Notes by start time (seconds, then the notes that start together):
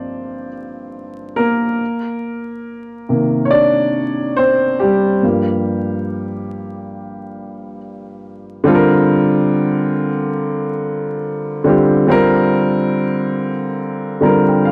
Already playing: G2 F3 A#3 C4 D4 C5 D5
1.36 A#3 A#4
3.09 C3 D#3 A#3
3.45 C#5
3.51 D4 D5
4.37 C4 C5
4.80 G3 G4
5.23 G2 F3 A#3
8.64 D3 G3 C4 F4
8.69 A4
8.75 A#4
11.64 D3 G3 C4 F4
11.69 G4
12.07 D3 G3 C4 F4
12.11 A#4
14.21 D3 G3 C4 F4 A#5
14.25 A#4
14.49 G5
14.65 F5